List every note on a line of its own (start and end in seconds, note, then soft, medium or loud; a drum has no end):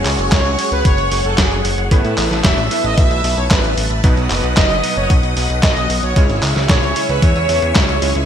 0.00 0.55 G#3 loud
0.00 0.55 C#4 medium
0.00 0.55 F#4 medium
0.00 1.87 G#4 medium
0.00 0.55 C#5 loud
0.00 1.89 C#5 medium
0.00 1.89 F#5 medium
0.00 1.88 C#6 medium
0.05 0.17 C#2 loud
0.05 clap medium
0.05 open hi-hat loud
0.18 0.30 F#1 medium
0.18 closed hi-hat soft
0.32 0.43 C#2 loud
0.32 0.73 C#5 loud
0.32 kick loud
0.32 snare loud
0.32 clap medium
0.32 closed hi-hat loud
0.45 0.57 C#2 medium
0.45 closed hi-hat soft
0.59 1.88 G#3 medium
0.59 1.88 C#4 medium
0.59 1.88 F#4 medium
0.59 1.88 C#5 medium
0.59 open hi-hat loud
0.72 0.83 C#2 medium
0.72 0.86 B4 loud
0.72 closed hi-hat soft
0.85 0.96 F#1 loud
0.85 1.26 C#5 loud
0.85 kick loud
0.85 closed hi-hat loud
0.98 1.10 F#1 medium
0.98 closed hi-hat soft
1.11 1.23 F#1 loud
1.11 open hi-hat loud
1.25 1.36 F#1 medium
1.25 1.37 A4 medium
1.25 closed hi-hat soft
1.38 1.50 F#1 loud
1.38 1.75 G#4 medium
1.38 kick loud
1.38 snare loud
1.38 clap medium
1.38 closed hi-hat loud
1.51 1.63 F#1 medium
1.51 closed hi-hat soft
1.65 1.76 F#1 medium
1.65 open hi-hat loud
1.78 1.89 F#1 medium
1.78 closed hi-hat soft
1.91 2.03 A1 loud
1.91 2.68 A2 loud
1.91 2.68 A3 medium
1.91 2.68 B3 medium
1.91 2.68 E4 medium
1.91 6.12 B4 medium
1.91 2.68 B4 loud
1.91 4.02 E5 medium
1.91 4.02 A5 medium
1.91 4.02 E6 medium
1.91 kick loud
1.91 closed hi-hat loud
2.04 2.16 A2 medium
2.04 closed hi-hat soft
2.18 2.29 A1 loud
2.18 clap medium
2.18 open hi-hat loud
2.31 2.42 A1 medium
2.31 snare soft
2.31 closed hi-hat soft
2.44 2.56 E1 loud
2.44 2.85 E5 loud
2.44 kick loud
2.44 snare loud
2.44 clap loud
2.44 closed hi-hat medium
2.58 2.69 A1 medium
2.58 closed hi-hat soft
2.71 4.01 A2 medium
2.71 4.01 A3 medium
2.71 4.01 B3 medium
2.71 4.01 E4 medium
2.71 4.01 B4 medium
2.71 open hi-hat loud
2.84 2.95 A1 medium
2.84 2.97 D#5 loud
2.84 closed hi-hat soft
2.98 3.09 B1 loud
2.98 3.35 E5 loud
2.98 kick loud
2.98 closed hi-hat medium
3.11 3.22 B1 medium
3.11 closed hi-hat soft
3.24 3.35 B1 medium
3.24 open hi-hat loud
3.37 3.49 B1 medium
3.37 3.44 C#5 loud
3.37 closed hi-hat soft
3.51 3.62 A1 loud
3.51 3.88 B4 medium
3.51 kick loud
3.51 snare loud
3.51 clap loud
3.51 closed hi-hat loud
3.64 3.75 A1 medium
3.64 closed hi-hat soft
3.77 3.88 A1 loud
3.77 open hi-hat loud
3.90 4.02 A1 medium
3.90 closed hi-hat soft
4.04 4.15 B1 loud
4.04 4.80 B2 medium
4.04 4.80 F#3 medium
4.04 4.80 B3 medium
4.04 4.80 D#4 medium
4.04 4.80 B4 loud
4.04 6.14 D#5 medium
4.04 6.14 F#5 medium
4.04 6.14 D#6 loud
4.04 kick loud
4.04 closed hi-hat medium
4.17 4.28 B1 medium
4.17 closed hi-hat soft
4.30 4.42 F#1 loud
4.30 clap medium
4.30 open hi-hat loud
4.43 4.55 B1 medium
4.43 closed hi-hat soft
4.57 4.68 F#1 loud
4.57 4.94 D#5 loud
4.57 kick loud
4.57 snare loud
4.57 clap medium
4.57 closed hi-hat medium
4.70 4.81 F#1 medium
4.70 closed hi-hat soft
4.84 6.13 B2 medium
4.84 6.13 F#3 medium
4.84 6.13 B3 medium
4.84 6.13 D#4 medium
4.84 6.13 B4 medium
4.84 open hi-hat loud
4.97 5.08 F#1 medium
4.97 5.09 C#5 medium
4.97 closed hi-hat soft
5.10 5.21 B1 loud
5.10 kick loud
5.10 closed hi-hat medium
5.23 5.35 B1 medium
5.23 closed hi-hat soft
5.37 5.48 B1 loud
5.37 open hi-hat loud
5.50 5.61 B1 medium
5.50 closed hi-hat soft
5.63 5.74 B1 loud
5.63 6.00 D#5 loud
5.63 kick loud
5.63 snare loud
5.63 clap loud
5.63 closed hi-hat medium
5.76 5.88 B1 medium
5.76 closed hi-hat soft
5.90 6.01 B1 loud
5.90 open hi-hat loud
6.03 6.14 B1 medium
6.03 6.28 C#5 medium
6.03 closed hi-hat soft
6.16 6.27 C#2 loud
6.16 6.93 C#3 medium
6.16 6.93 G#3 medium
6.16 6.93 C#4 medium
6.16 6.93 E4 medium
6.16 8.26 G#4 medium
6.16 6.93 C#5 loud
6.16 8.26 C#5 medium
6.16 8.26 E5 medium
6.16 8.26 C#6 medium
6.16 kick loud
6.16 closed hi-hat medium
6.29 6.41 G#1 medium
6.29 closed hi-hat soft
6.43 6.54 C#2 loud
6.43 clap medium
6.43 open hi-hat loud
6.56 6.67 C#2 medium
6.56 snare soft
6.56 closed hi-hat soft
6.69 6.81 B1 loud
6.69 7.10 C#5 loud
6.69 kick loud
6.69 snare loud
6.69 clap medium
6.69 closed hi-hat medium
6.83 6.94 C#2 medium
6.83 closed hi-hat soft
6.96 7.99 C#3 medium
6.96 7.99 G#3 medium
6.96 7.99 C#4 medium
6.96 7.99 E4 medium
6.96 7.99 C#5 medium
6.96 open hi-hat loud
7.09 7.20 C#2 medium
7.09 7.22 B4 loud
7.09 closed hi-hat soft
7.22 7.34 E2 loud
7.22 7.72 C#5 loud
7.22 kick loud
7.22 closed hi-hat medium
7.36 7.47 E2 medium
7.36 closed hi-hat soft
7.49 7.60 E2 loud
7.49 open hi-hat loud
7.62 7.74 E2 medium
7.62 closed hi-hat soft
7.76 7.87 C#2 loud
7.76 8.13 C#5 loud
7.76 kick loud
7.76 snare loud
7.76 clap medium
7.76 closed hi-hat medium
7.89 8.00 C#2 medium
7.89 closed hi-hat soft
8.02 8.13 C#2 medium
8.02 8.25 G#3 medium
8.02 8.25 C#4 medium
8.02 8.25 E4 medium
8.02 8.25 C#5 medium
8.02 open hi-hat loud
8.15 8.26 C#2 medium
8.15 closed hi-hat soft